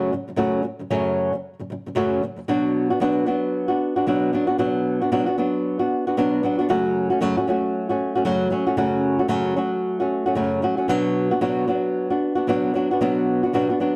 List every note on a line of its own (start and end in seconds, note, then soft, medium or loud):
0.00 0.11 F#2 medium
0.00 0.12 C#3 medium
0.00 0.12 F#3 medium
0.00 0.12 A3 medium
0.00 0.12 C#4 medium
0.00 0.12 F#4 loud
0.12 0.27 F#2 medium
0.12 0.27 C#3 medium
0.12 0.29 F#3 medium
0.28 0.35 F#2 soft
0.28 0.35 C#3 medium
0.28 0.36 F#3 medium
0.36 0.62 F#2 medium
0.36 0.63 C#3 medium
0.36 0.64 F#3 medium
0.36 0.64 A3 medium
0.36 0.64 C#4 medium
0.36 0.65 F#4 medium
0.63 0.78 F#2 medium
0.63 0.79 C#3 medium
0.63 0.80 F#3 medium
0.79 0.90 F#2 soft
0.79 0.89 C#3 medium
0.79 0.89 F#3 medium
0.91 1.32 F#2 medium
0.91 1.32 C#3 medium
0.91 1.33 F#3 medium
0.91 1.33 A3 medium
0.91 1.33 C#4 medium
0.91 1.33 F#4 medium
1.33 1.53 F#2 soft
1.33 1.53 C#3 soft
1.33 1.54 F#3 medium
1.59 1.69 F#2 soft
1.59 1.70 C#3 medium
1.59 1.70 F#3 soft
1.70 1.85 F#2 medium
1.70 1.86 C#3 medium
1.70 1.87 F#3 medium
1.86 1.94 F#2 medium
1.86 1.95 C#3 medium
1.86 1.95 F#3 medium
1.95 2.21 F#2 medium
1.95 2.22 C#3 medium
1.95 2.22 F#3 medium
1.95 2.22 A3 medium
1.95 2.22 C#4 medium
1.95 2.23 F#4 medium
2.23 2.35 F#2 medium
2.23 2.36 C#3 medium
2.23 2.38 F#3 medium
2.36 2.48 F#2 soft
2.36 2.48 C#3 soft
2.36 2.47 F#3 medium
2.48 2.90 B2 medium
2.48 2.90 F#3 medium
2.48 2.90 B3 medium
2.48 2.90 D4 medium
2.48 2.89 F#4 medium
2.90 3.00 B3 soft
2.90 3.01 D4 medium
2.90 3.00 F#4 medium
3.00 3.27 B2 medium
3.00 3.25 F#3 medium
3.00 3.25 B3 loud
3.00 3.26 D4 medium
3.00 3.27 F#4 loud
3.26 3.69 F#3 medium
3.26 3.68 B3 medium
3.26 3.68 D4 medium
3.26 3.67 F#4 medium
3.68 3.96 B3 soft
3.68 3.96 D4 medium
3.68 3.95 F#4 medium
3.96 4.06 B3 soft
3.96 4.06 D4 medium
3.96 4.06 F#4 medium
4.07 4.33 B2 medium
4.07 4.32 F#3 medium
4.07 4.32 B3 medium
4.07 4.33 D4 medium
4.07 4.33 F#4 medium
4.33 4.48 F#3 medium
4.33 4.48 B3 medium
4.33 4.47 D4 medium
4.33 4.46 F#4 medium
4.47 4.58 B3 soft
4.47 4.58 D4 soft
4.47 4.58 F#4 medium
4.58 5.01 B2 medium
4.58 5.01 F#3 medium
4.58 5.01 B3 medium
4.58 5.01 D4 medium
4.58 5.00 F#4 medium
5.02 5.10 B3 soft
5.02 5.11 D4 medium
5.02 5.12 F#4 medium
5.12 5.27 B2 medium
5.12 5.27 F#3 medium
5.12 5.27 B3 loud
5.12 5.26 D4 loud
5.12 5.25 F#4 medium
5.26 5.37 B3 soft
5.26 5.37 D4 medium
5.26 5.37 F#4 medium
5.38 5.80 F#3 medium
5.38 5.79 B3 medium
5.38 5.78 D4 medium
5.38 5.78 F#4 medium
5.79 6.06 B3 soft
5.79 6.06 D4 medium
5.79 6.06 F#4 medium
6.07 6.16 B3 soft
6.07 6.17 D4 medium
6.07 6.17 F#4 medium
6.17 6.43 B2 medium
6.17 6.42 F#3 medium
6.17 6.42 B3 medium
6.17 6.43 D4 medium
6.17 6.44 F#4 medium
6.43 6.59 F#3 medium
6.43 6.59 B3 medium
6.43 6.58 D4 medium
6.43 6.57 F#4 medium
6.59 6.69 B3 medium
6.59 6.69 D4 medium
6.59 6.69 F#4 medium
6.69 7.11 F#2 medium
6.69 7.11 C#3 medium
6.69 7.11 F#3 medium
6.69 7.10 A3 medium
6.69 7.10 C#4 medium
6.69 7.09 F#4 loud
7.10 7.20 F#3 soft
7.10 7.20 A3 medium
7.10 7.21 C#4 medium
7.10 7.21 F#4 medium
7.21 7.37 F#2 medium
7.21 7.37 C#3 loud
7.21 7.37 F#3 loud
7.21 7.37 A3 medium
7.21 7.36 C#4 loud
7.21 7.36 F#4 loud
7.37 7.46 F#3 soft
7.37 7.46 A3 medium
7.37 7.47 C#4 medium
7.37 7.48 F#4 medium
7.47 7.90 F#3 medium
7.47 7.89 A3 medium
7.47 7.89 C#4 medium
7.47 7.88 F#4 medium
7.89 8.17 F#3 medium
7.89 8.16 A3 medium
7.89 8.15 C#4 medium
7.89 8.14 F#4 medium
8.15 8.24 F#3 medium
8.15 8.24 A3 medium
8.15 8.25 C#4 medium
8.15 8.25 F#4 medium
8.25 8.52 F#2 medium
8.25 8.52 C#3 medium
8.25 8.49 F#3 loud
8.25 8.50 A3 medium
8.25 8.51 C#4 medium
8.25 8.51 F#4 medium
8.50 8.67 F#3 medium
8.50 8.67 A3 medium
8.50 8.66 C#4 medium
8.50 8.65 F#4 medium
8.67 8.76 F#3 medium
8.67 8.76 A3 medium
8.67 8.77 C#4 medium
8.67 8.77 F#4 medium
8.77 9.20 F#2 medium
8.77 9.20 C#3 medium
8.77 9.20 F#3 medium
8.77 9.19 A3 medium
8.77 9.19 C#4 medium
8.77 9.18 F#4 loud
9.19 9.27 F#3 soft
9.19 9.28 A3 medium
9.19 9.28 C#4 medium
9.19 9.28 F#4 medium
9.28 9.56 F#2 medium
9.28 9.56 C#3 medium
9.28 9.55 F#3 loud
9.28 9.55 A3 medium
9.28 9.56 C#4 medium
9.28 9.57 F#4 loud
9.56 9.99 F#3 medium
9.56 9.99 A3 medium
9.56 9.99 C#4 medium
9.56 9.99 F#4 medium
10.00 10.27 F#3 soft
10.00 10.26 A3 medium
10.00 10.26 C#4 medium
10.00 10.25 F#4 medium
10.26 10.35 F#3 soft
10.26 10.35 A3 medium
10.26 10.35 C#4 medium
10.26 10.36 F#4 medium
10.35 10.62 F#2 medium
10.35 10.63 C#3 medium
10.35 10.61 F#3 medium
10.35 10.62 A3 medium
10.35 10.62 C#4 medium
10.35 10.63 F#4 medium
10.62 10.78 F#3 medium
10.62 10.77 A3 medium
10.62 10.77 C#4 medium
10.62 10.76 F#4 medium
10.77 10.88 F#3 soft
10.77 10.88 A3 soft
10.77 10.89 C#4 medium
10.77 10.88 F#4 medium
10.88 11.31 B2 medium
10.88 11.32 F#3 medium
10.88 11.31 B3 medium
10.88 11.30 D4 medium
10.88 11.30 F#4 medium
11.31 11.40 B3 medium
11.31 11.41 D4 medium
11.31 11.41 F#4 medium
11.41 11.68 B2 medium
11.41 11.66 F#3 loud
11.41 11.66 B3 loud
11.41 11.67 D4 medium
11.41 11.68 F#4 medium
11.67 12.10 F#3 medium
11.67 12.10 B3 medium
11.67 12.09 D4 medium
11.67 12.09 F#4 medium
12.10 12.36 B3 soft
12.10 12.36 D4 medium
12.10 12.34 F#4 medium
12.35 12.48 B3 soft
12.35 12.47 D4 medium
12.35 12.47 F#4 medium
12.47 12.74 B2 medium
12.47 12.73 F#3 medium
12.47 12.74 B3 medium
12.47 12.74 D4 loud
12.47 12.75 F#4 medium
12.74 12.90 F#3 medium
12.74 12.90 B3 medium
12.74 12.90 D4 medium
12.74 12.90 F#4 medium
12.91 13.00 B3 soft
12.91 13.01 D4 medium
12.91 13.01 F#4 medium
13.01 13.42 B2 medium
13.01 13.43 F#3 medium
13.01 13.43 B3 medium
13.01 13.43 D4 medium
13.01 13.42 F#4 medium
13.43 13.53 B3 soft
13.43 13.53 D4 medium
13.43 13.53 F#4 medium
13.53 13.69 B2 medium
13.53 13.69 F#3 medium
13.53 13.69 B3 medium
13.53 13.69 D4 medium
13.53 13.69 F#4 loud
13.70 13.79 B3 soft
13.70 13.80 D4 medium
13.70 13.80 F#4 medium
13.80 13.96 F#3 medium
13.80 13.96 B3 medium
13.80 13.96 D4 medium
13.80 13.96 F#4 medium